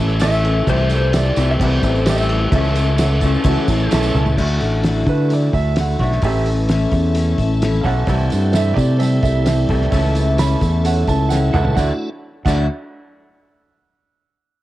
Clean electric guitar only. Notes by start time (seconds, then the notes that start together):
Already playing: A2 E3 A3 C#4 A4
0.20 A2 E3 A3 C#4 A4
0.67 C3 E3 A3 E4 G4
1.36 C3 E3 A3 E4 G4
2.06 C3 E3 A3 E4 G4
2.52 C#3 E3 A3 C#4 A4
3.22 C#3 E3 A3 C#4 A4
3.91 C#3 E3 A3 C#4 A4
4.37 D3 A3 E4 F#4
6.00 D3 A3 E4 F#4
6.23 A2 E3 A3 C#4 A4
7.84 A2 E3 A3 C#4 A4
8.08 C3 E3 G3 E4 A4
9.70 C3 E3 G3 E4 A4
9.92 C#3 E3 A3 E4 A4
11.53 C#3 E3 A3 E4 A4
11.77 D3 F#3 A3 D4 E4
12.46 D3 F#3 A3 D4 E4